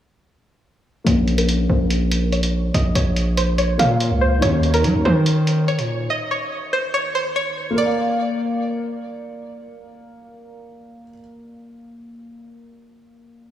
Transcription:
1.04 A#1 A#3 A#4 C#5, closed hi-hat
1.09 C#4 F5
1.28 closed hi-hat
1.38 A#4, closed hi-hat
1.49 closed hi-hat
1.69 A#1 C5
1.90 closed hi-hat
2.12 closed hi-hat
2.32 C#5, closed hi-hat
2.43 closed hi-hat
2.74 A#1 D#5, closed hi-hat
2.95 A#1 C#5, closed hi-hat
3.16 closed hi-hat
3.37 C5, closed hi-hat
3.58 C#5, closed hi-hat
3.78 A#2 A#3 A#4 C#5 F5, closed hi-hat
4.00 closed hi-hat
4.11 C#2
4.21 C5
4.38 D#2 D#3 D#4 C#5, closed hi-hat
4.43 C#4 F#4
4.63 closed hi-hat
4.74 A#4, closed hi-hat
4.84 F#3, closed hi-hat
4.95 D#2
5.05 D#3 C5
5.26 closed hi-hat
5.47 closed hi-hat
5.68 C#5, closed hi-hat
5.79 A#2, closed hi-hat
6.10 D#5
6.31 C#5
6.73 C5
6.94 C#5
7.15 C5
7.36 C#5
7.70 A#3
7.75 A#4 D5
7.80 D5
7.85 F5

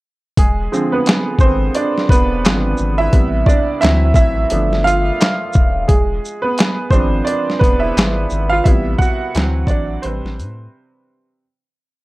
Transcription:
0.37 E1 G#3 G#4, kick, closed hi-hat
0.72 D3 F3 G#3 C4, shaker
0.92 B3 B4
1.06 snare, clap, closed hi-hat
1.39 G#1 C4 C5, kick, shaker
1.75 D4 D5, closed hi-hat
1.98 snare
2.09 E1 B3 B4, kick, closed hi-hat, shaker
2.45 G#1 D3 F3 G#3 C4, snare, clap, closed hi-hat
2.77 G#1, shaker
2.98 E4 E5
3.13 A1 C3 G3 B3, kick, closed hi-hat
3.46 D4 D5, kick, shaker
3.81 D2 E3 F#3 C4 E4 E5, snare, clap, closed hi-hat
4.14 A1 E4 E5, kick, shaker
4.50 G1 F3 A3 B3 D4, closed hi-hat
4.73 snare
4.84 F4 F5, closed hi-hat, shaker
5.21 snare, clap, closed hi-hat
5.53 D#1, kick, shaker
5.88 E1 G#3 G#4, kick, closed hi-hat
6.25 shaker
6.42 B3 B4
6.58 snare, clap, closed hi-hat
6.91 G#1 F3 G#3 C4 D4 C5, kick, shaker
7.25 D4 D5, closed hi-hat
7.50 snare
7.59 E1 B3 B4, kick
7.64 closed hi-hat, shaker
7.80 E4 E5
7.96 G#1, snare, clap, closed hi-hat
8.30 G#1, shaker
8.50 F4 F5
8.64 A1 C3 G3 B3 E4 E5, kick, closed hi-hat
8.98 F#4 F#5, kick, shaker
9.35 D2 E3 F#3 C4, snare, clap, closed hi-hat
9.67 A1 D4 D5, kick, closed hi-hat, shaker
10.02 A1 C3 G3 C4 B4 C5, closed hi-hat
10.24 A1, snare
10.39 A2, closed hi-hat, shaker

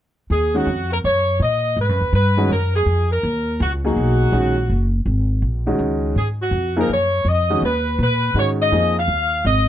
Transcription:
0.30 D#2 G#4
0.54 D#3 G#3 C#4 F#4
0.67 F2
0.92 A#4
1.04 F#2 C#5
1.40 A#2 D#5
1.77 G#2 B4
1.89 F#2
2.01 D#2
2.13 G2 B4
2.37 D#3 G#3 C#4 F#4
2.49 F#2 A#4
2.75 G#4
2.86 F2
3.12 A#4
3.23 D#2
3.60 C#2 F#4
3.84 F#3 A#3 D#4 F#4 G#4
3.96 B1
4.32 A#1 D#3 G#3 C#4 F#4
4.69 F#1
5.06 G#1
5.42 A#1
5.66 D#3 G#3 C#4 F#4
5.79 C#2
6.16 G#2 G#4
6.42 F#4
6.51 F2
6.76 F3 A#3 D#4 G#4 A#4
6.89 F#2 C#5
7.25 F2 D#5
7.50 D#3 G#3 C#4 F#4
7.62 D#2 B4
7.99 A#2 B4
8.34 G#2 D#3 G#3 C#4 F#4
8.39 C#5
8.61 D#5
8.72 F2 F3 A#3 D#4 G#4
8.99 F5
9.08 D#2
9.45 G#1 D#5

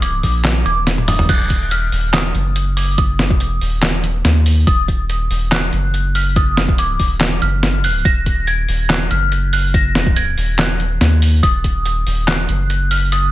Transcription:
Already playing: F#1
0.02 D6, closed hi-hat
0.23 A#1, kick, open hi-hat
0.45 snare, clap, closed hi-hat
0.65 D#1 D6, closed hi-hat
0.87 snare, closed hi-hat
0.98 high tom
1.08 D#6, open hi-hat, mid tom
1.19 mid tom
1.29 D#1 F#6, kick, closed hi-hat, crash
1.50 kick, closed hi-hat
1.71 F6, closed hi-hat
1.92 D#1, open hi-hat
2.13 D#6, snare, clap, closed hi-hat
2.34 F#1, closed hi-hat
2.56 closed hi-hat
2.77 D6, open hi-hat
2.98 D#6, kick, closed hi-hat
3.19 F1, snare, closed hi-hat
3.30 kick
3.40 closed hi-hat
3.47 E1
3.61 D#1, open hi-hat
3.82 snare, clap, closed hi-hat
4.04 closed hi-hat
4.25 D#2, snare, closed hi-hat
4.46 open hi-hat
4.67 D#1 D#6, kick, closed hi-hat
4.88 kick, closed hi-hat
5.10 closed hi-hat
5.30 D#1, open hi-hat
5.52 F#6, snare, clap, closed hi-hat
5.73 F#1, closed hi-hat
5.94 closed hi-hat
6.15 F6, open hi-hat
6.36 D#6, kick, closed hi-hat
6.57 snare, closed hi-hat
6.69 kick
6.78 D6, closed hi-hat
7.00 D#1, kick, open hi-hat
7.21 snare, clap, closed hi-hat
7.42 F#1 F6, closed hi-hat
7.63 snare, closed hi-hat
7.84 F#6, open hi-hat
8.05 D#1 A#6, kick, closed hi-hat
8.26 kick, closed hi-hat
8.47 G#6, closed hi-hat
8.69 D#1, open hi-hat
8.89 F#6, snare, clap, closed hi-hat
9.11 F#1 F6, closed hi-hat
9.32 closed hi-hat
9.53 F#6, open hi-hat
9.74 A#6, kick, closed hi-hat
9.95 snare, closed hi-hat
10.06 kick
10.16 G#6, closed hi-hat
10.37 D#1, open hi-hat
10.59 F#6, snare, clap, closed hi-hat
10.80 closed hi-hat
11.01 D#2, snare, closed hi-hat
11.22 open hi-hat
11.43 D#1 D#6, kick, closed hi-hat
11.64 kick, closed hi-hat
11.86 closed hi-hat
12.07 D#1, open hi-hat
12.27 F#6, snare, clap, closed hi-hat
12.49 F#1, closed hi-hat
12.70 closed hi-hat
12.91 F6, open hi-hat
13.12 D#6, closed hi-hat

